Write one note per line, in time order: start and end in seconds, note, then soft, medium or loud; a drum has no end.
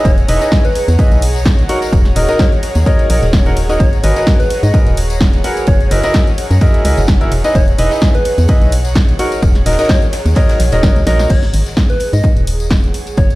0.00 11.29 G#4 medium
0.00 11.30 C#5 medium
0.00 11.30 F#5 medium
0.00 13.18 A#5 loud
0.05 0.25 E1 medium
0.05 0.20 C#5 medium
0.05 kick loud
0.05 closed hi-hat medium
0.05 ride medium
0.05 tambourine medium
0.17 closed hi-hat soft
0.17 tambourine soft
0.28 0.39 E1 medium
0.28 0.39 D#4 loud
0.28 0.39 E4 medium
0.28 0.39 G#4 medium
0.28 0.39 B4 medium
0.28 0.39 D#5 loud
0.28 open hi-hat loud
0.28 ride medium
0.41 0.62 D#4 medium
0.41 0.62 E4 medium
0.41 0.62 G#4 medium
0.41 0.62 B4 medium
0.41 0.62 D#5 medium
0.41 snare soft
0.41 closed hi-hat soft
0.41 tambourine medium
0.52 kick loud
0.52 snare loud
0.52 closed hi-hat medium
0.52 ride medium
0.52 tambourine medium
0.64 0.86 B4 medium
0.64 closed hi-hat soft
0.64 tambourine soft
0.75 open hi-hat loud
0.75 ride medium
0.88 0.97 E2 loud
0.88 ride soft
0.88 tambourine medium
0.99 1.20 D#4 medium
0.99 1.20 E4 medium
0.99 1.20 G#4 medium
0.99 1.20 B4 medium
0.99 1.20 D#5 medium
0.99 kick loud
0.99 closed hi-hat medium
0.99 ride medium
0.99 tambourine medium
1.11 1.66 B1 medium
1.11 closed hi-hat soft
1.11 tambourine soft
1.22 open hi-hat loud
1.22 ride medium
1.35 closed hi-hat soft
1.35 tambourine medium
1.46 kick loud
1.46 snare loud
1.46 closed hi-hat medium
1.46 ride medium
1.46 ride loud
1.59 closed hi-hat soft
1.59 tambourine soft
1.69 1.90 D#4 medium
1.69 1.84 F#4 medium
1.69 1.90 F#4 medium
1.69 1.90 A#4 medium
1.69 1.90 C#5 medium
1.69 1.90 F#5 loud
1.69 open hi-hat loud
1.69 ride medium
1.82 closed hi-hat soft
1.82 ride soft
1.82 tambourine medium
1.93 2.13 D#1 medium
1.93 kick loud
1.93 closed hi-hat medium
1.93 ride medium
1.93 tambourine medium
2.05 snare soft
2.05 closed hi-hat soft
2.05 tambourine soft
2.16 2.27 D#1 medium
2.16 2.26 D#4 medium
2.16 2.26 F#4 medium
2.16 2.26 A#4 medium
2.16 2.26 C#5 medium
2.16 2.26 D#5 medium
2.16 snare soft
2.16 open hi-hat loud
2.16 ride medium
2.28 2.49 D#4 loud
2.28 2.49 F#4 medium
2.28 2.49 A#4 medium
2.28 2.37 A#4 loud
2.28 2.49 C#5 medium
2.28 2.49 D#5 loud
2.28 closed hi-hat soft
2.28 ride soft
2.28 tambourine medium
2.39 2.54 C#5 medium
2.39 kick loud
2.39 snare loud
2.39 closed hi-hat medium
2.39 ride medium
2.39 tambourine medium
2.52 closed hi-hat soft
2.52 tambourine soft
2.63 open hi-hat loud
2.63 ride medium
2.75 2.85 D#2 loud
2.75 closed hi-hat soft
2.75 tambourine medium
2.86 3.07 D#4 loud
2.86 3.07 F#4 medium
2.86 3.07 A#4 medium
2.86 3.07 C#5 medium
2.86 3.52 C#5 loud
2.86 3.07 D#5 loud
2.86 kick loud
2.86 closed hi-hat medium
2.86 ride medium
2.86 tambourine medium
2.99 closed hi-hat soft
2.99 tambourine soft
3.10 3.20 A#1 medium
3.10 3.24 D#4 medium
3.10 3.24 F#4 medium
3.10 3.24 A#4 medium
3.10 3.24 C#5 medium
3.10 3.24 D#5 medium
3.10 open hi-hat loud
3.10 ride medium
3.22 3.45 D#1 loud
3.22 closed hi-hat soft
3.22 ride soft
3.22 tambourine medium
3.33 kick loud
3.33 snare loud
3.33 closed hi-hat medium
3.33 ride medium
3.33 tambourine medium
3.46 3.77 D#1 medium
3.46 3.58 D#4 medium
3.46 3.58 F#4 medium
3.46 3.58 A#4 medium
3.46 3.58 C#5 medium
3.46 3.58 F#5 loud
3.46 closed hi-hat soft
3.46 ride soft
3.46 tambourine soft
3.57 open hi-hat loud
3.57 ride medium
3.69 3.79 D#4 medium
3.69 3.79 F#4 medium
3.69 3.79 A#4 medium
3.69 3.79 C#5 medium
3.69 3.79 D#5 loud
3.69 closed hi-hat soft
3.69 tambourine medium
3.80 4.00 G#1 loud
3.80 3.95 C#5 medium
3.80 kick loud
3.80 closed hi-hat medium
3.80 ride medium
3.80 tambourine medium
3.93 closed hi-hat soft
3.93 tambourine soft
4.04 4.14 G#1 loud
4.04 4.14 F#4 loud
4.04 4.14 G#4 medium
4.04 4.14 A#4 medium
4.04 4.14 B4 medium
4.04 4.14 D#5 loud
4.04 open hi-hat loud
4.04 ride medium
4.16 4.37 F#4 medium
4.16 4.37 G#4 medium
4.16 4.37 A#4 medium
4.16 4.37 B4 medium
4.16 4.37 D#5 medium
4.16 snare soft
4.16 closed hi-hat soft
4.16 tambourine medium
4.27 kick loud
4.27 snare loud
4.27 closed hi-hat medium
4.27 ride medium
4.27 tambourine medium
4.40 4.61 B4 medium
4.40 closed hi-hat soft
4.40 tambourine soft
4.50 open hi-hat loud
4.50 ride medium
4.63 4.72 G#2 loud
4.63 4.76 D#5 medium
4.63 closed hi-hat soft
4.63 ride soft
4.63 tambourine medium
4.74 4.95 F#4 medium
4.74 4.95 G#4 medium
4.74 4.95 A#4 medium
4.74 4.95 B4 medium
4.74 4.95 D#5 medium
4.74 kick loud
4.74 closed hi-hat medium
4.74 ride medium
4.74 tambourine medium
4.86 5.41 D#1 medium
4.86 closed hi-hat soft
4.86 tambourine soft
4.97 open hi-hat loud
4.97 ride medium
5.10 closed hi-hat soft
5.10 tambourine medium
5.21 kick loud
5.21 snare loud
5.21 closed hi-hat medium
5.21 ride medium
5.33 closed hi-hat soft
5.33 tambourine soft
5.44 5.65 F#4 medium
5.44 5.65 G#4 medium
5.44 5.65 A#4 medium
5.44 5.65 B4 medium
5.44 5.65 F#5 loud
5.44 open hi-hat loud
5.44 ride medium
5.57 ride soft
5.57 tambourine medium
5.67 5.88 F#1 medium
5.67 6.04 C#5 loud
5.67 kick loud
5.67 closed hi-hat medium
5.67 ride medium
5.67 tambourine medium
5.80 closed hi-hat soft
5.80 tambourine soft
5.91 6.02 F#1 loud
5.91 6.01 E4 medium
5.91 6.01 F#4 medium
5.91 6.01 G#4 medium
5.91 6.01 A#4 medium
5.91 6.01 D#5 medium
5.91 snare soft
5.91 open hi-hat loud
5.91 ride medium
6.03 6.24 E4 loud
6.03 6.24 F#4 medium
6.03 6.24 G#4 medium
6.03 6.24 A#4 loud
6.03 6.24 D#5 loud
6.03 closed hi-hat soft
6.03 ride soft
6.03 tambourine medium
6.14 kick loud
6.14 snare loud
6.14 closed hi-hat medium
6.14 ride loud
6.14 ride medium
6.27 closed hi-hat soft
6.27 tambourine soft
6.38 open hi-hat loud
6.38 ride medium
6.51 6.60 F#2 loud
6.51 closed hi-hat soft
6.51 tambourine medium
6.61 6.82 E4 loud
6.61 6.82 F#4 medium
6.61 6.82 G#4 medium
6.61 6.82 A#4 medium
6.61 6.82 D#5 loud
6.61 kick loud
6.61 closed hi-hat medium
6.61 ride medium
6.61 tambourine medium
6.74 closed hi-hat soft
6.74 tambourine soft
6.85 6.95 C#2 loud
6.85 6.99 E4 medium
6.85 6.99 F#4 medium
6.85 6.99 G#4 medium
6.85 6.99 A#4 medium
6.85 6.99 D#5 medium
6.85 open hi-hat loud
6.85 ride medium
6.97 7.29 F#1 loud
6.97 closed hi-hat soft
6.97 ride soft
6.97 tambourine medium
7.07 kick loud
7.07 snare loud
7.07 closed hi-hat medium
7.07 ride medium
7.07 tambourine medium
7.21 7.30 E4 medium
7.21 7.30 F#4 medium
7.21 7.30 G#4 medium
7.21 7.30 A#4 medium
7.21 7.30 E5 loud
7.21 closed hi-hat soft
7.21 ride soft
7.21 tambourine soft
7.32 7.42 E1 medium
7.32 open hi-hat loud
7.32 ride medium
7.44 7.56 D#4 medium
7.44 7.56 E4 medium
7.44 7.56 G#4 medium
7.44 7.56 B4 medium
7.44 7.56 D#5 loud
7.44 closed hi-hat soft
7.44 tambourine medium
7.55 7.75 E1 medium
7.55 7.70 C#5 loud
7.55 kick loud
7.55 closed hi-hat medium
7.55 ride medium
7.55 tambourine medium
7.68 closed hi-hat soft
7.68 tambourine soft
7.78 7.89 E1 medium
7.78 7.89 D#4 medium
7.78 7.89 E4 medium
7.78 7.89 G#4 medium
7.78 7.89 B4 medium
7.78 7.89 D#5 loud
7.78 open hi-hat loud
7.78 ride medium
7.91 8.12 D#4 medium
7.91 8.12 E4 medium
7.91 8.12 G#4 medium
7.91 8.12 B4 medium
7.91 8.12 D#5 medium
7.91 snare soft
7.91 closed hi-hat soft
7.91 tambourine medium
8.01 kick loud
8.01 snare loud
8.01 closed hi-hat medium
8.01 ride medium
8.01 tambourine medium
8.14 8.36 B4 loud
8.14 closed hi-hat soft
8.14 tambourine soft
8.25 open hi-hat loud
8.25 ride medium
8.38 8.47 E2 loud
8.38 closed hi-hat soft
8.38 ride soft
8.38 tambourine medium
8.48 8.70 D#4 medium
8.48 8.70 E4 medium
8.48 8.70 G#4 medium
8.48 8.70 B4 medium
8.48 8.70 D#5 medium
8.48 kick loud
8.48 closed hi-hat medium
8.48 ride medium
8.48 tambourine medium
8.61 9.16 B1 medium
8.61 closed hi-hat soft
8.61 tambourine soft
8.72 open hi-hat loud
8.72 ride medium
8.85 closed hi-hat soft
8.85 tambourine medium
8.96 kick loud
8.96 snare loud
8.96 closed hi-hat medium
8.96 ride medium
9.08 closed hi-hat soft
9.08 tambourine soft
9.19 9.40 D#4 medium
9.19 9.40 F#4 medium
9.19 9.34 F#4 loud
9.19 9.40 A#4 medium
9.19 9.40 C#5 medium
9.19 9.40 F#5 loud
9.19 open hi-hat loud
9.19 ride medium
9.32 closed hi-hat soft
9.32 ride soft
9.32 tambourine medium
9.42 9.63 D#1 loud
9.42 kick loud
9.42 closed hi-hat medium
9.42 ride medium
9.42 tambourine medium
9.55 snare soft
9.55 closed hi-hat soft
9.55 tambourine soft
9.66 9.77 D#1 loud
9.66 9.76 D#4 medium
9.66 9.76 F#4 medium
9.66 9.76 A#4 medium
9.66 9.76 C#5 medium
9.66 9.76 D#5 loud
9.66 snare medium
9.66 open hi-hat loud
9.66 ride medium
9.72 snare loud
9.72 ride medium
9.79 9.99 D#4 loud
9.79 9.99 F#4 medium
9.79 9.99 A#4 medium
9.79 9.87 A#4 loud
9.79 9.99 C#5 medium
9.79 9.99 D#5 loud
9.79 snare medium
9.79 closed hi-hat soft
9.79 ride medium
9.79 tambourine medium
9.84 snare medium
9.84 ride medium
9.89 10.04 C#5 loud
9.89 kick loud
9.89 snare loud
9.89 closed hi-hat medium
9.89 ride loud
9.89 ride medium
9.89 tambourine medium
10.02 closed hi-hat soft
10.02 tambourine soft
10.13 snare loud
10.13 open hi-hat loud
10.13 ride medium
10.26 10.35 D#2 loud
10.26 closed hi-hat soft
10.26 ride soft
10.26 tambourine medium
10.35 10.57 D#4 loud
10.35 10.57 F#4 medium
10.35 10.57 A#4 medium
10.35 10.57 C#5 medium
10.35 11.02 C#5 loud
10.35 10.57 D#5 loud
10.35 kick loud
10.35 snare loud
10.35 closed hi-hat medium
10.35 ride medium
10.35 tambourine medium
10.49 snare loud
10.49 closed hi-hat soft
10.49 ride medium
10.49 tambourine soft
10.59 10.70 A#1 loud
10.59 snare loud
10.59 open hi-hat loud
10.59 ride medium
10.72 10.83 D#1 loud
10.72 10.81 D#4 medium
10.72 10.81 F#4 medium
10.72 10.81 A#4 medium
10.72 10.81 C#5 medium
10.72 10.81 D#5 medium
10.72 snare loud
10.72 closed hi-hat soft
10.72 ride medium
10.72 tambourine medium
10.83 10.94 F#1 medium
10.83 10.97 D#4 medium
10.83 10.97 F#4 medium
10.83 10.97 A#4 medium
10.83 10.97 C#5 medium
10.83 10.97 D#5 medium
10.83 kick loud
10.83 snare loud
10.83 closed hi-hat medium
10.83 ride medium
10.83 tambourine medium
10.96 11.05 C#2 medium
10.96 closed hi-hat soft
10.96 tambourine soft
11.06 11.27 A#1 loud
11.06 11.28 D#4 loud
11.06 11.28 F#4 medium
11.06 11.28 A#4 medium
11.06 11.28 C#5 medium
11.06 11.28 D#5 loud
11.06 snare medium
11.06 open hi-hat loud
11.06 ride medium
11.19 snare medium
11.19 closed hi-hat soft
11.19 tambourine medium
11.30 11.50 G#1 medium
11.30 13.35 G#4 medium
11.30 11.45 C#5 medium
11.30 kick loud
11.30 closed hi-hat medium
11.30 crash medium
11.30 ride medium
11.30 tambourine medium
11.43 snare soft
11.43 closed hi-hat soft
11.43 tambourine soft
11.53 11.64 G#1 medium
11.53 open hi-hat loud
11.53 ride medium
11.66 snare soft
11.66 closed hi-hat soft
11.66 tambourine medium
11.77 13.35 C#5 medium
11.77 kick loud
11.77 snare loud
11.77 closed hi-hat medium
11.77 ride medium
11.77 tambourine medium
11.89 12.11 B4 medium
11.89 closed hi-hat soft
11.89 tambourine soft
12.00 open hi-hat loud
12.00 ride medium
12.13 12.22 G#2 loud
12.13 12.26 D#5 medium
12.13 13.35 F#5 medium
12.13 closed hi-hat soft
12.13 ride soft
12.13 tambourine medium
12.23 kick loud
12.23 closed hi-hat medium
12.23 ride medium
12.23 tambourine medium
12.36 12.91 D#1 medium
12.36 closed hi-hat soft
12.36 tambourine soft
12.47 open hi-hat loud
12.47 ride medium
12.60 closed hi-hat soft
12.60 tambourine medium
12.70 kick loud
12.70 snare loud
12.70 closed hi-hat medium
12.70 ride medium
12.70 tambourine medium
12.84 closed hi-hat soft
12.84 tambourine soft
12.94 open hi-hat loud
12.94 ride medium
13.07 closed hi-hat soft
13.07 ride soft
13.07 tambourine medium
13.17 13.35 F#1 medium
13.17 13.35 C#5 medium
13.17 kick loud
13.17 closed hi-hat medium
13.17 ride medium
13.17 tambourine medium
13.30 closed hi-hat soft
13.30 tambourine soft